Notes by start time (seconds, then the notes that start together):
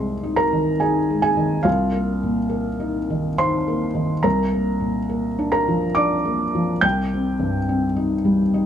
Already playing: C2 C3 G#3 C5 C6
0.23 D#4
0.36 A#4 A#5
0.53 D#3
0.80 D#4 G#4 G#5
1.10 G#3
1.22 G#4 G#5
1.37 D#3
1.63 C2 F4 F5
1.92 A#3
2.23 A#2
2.49 A#3
2.80 D#4
3.10 D#3
3.38 D#4 C5 C6
3.68 A#3
3.95 D#3
4.23 C2 A#4 A#5
4.53 A#3
4.80 A#2
5.09 A#3
5.39 D4
5.52 A#4 A#5
5.68 F3
5.95 D4 D5 D6
6.25 A#3
6.55 F3
6.81 C2 G5 G6
7.14 C4
7.40 G2
7.69 C4
7.96 D#4
8.25 G3
8.54 D#4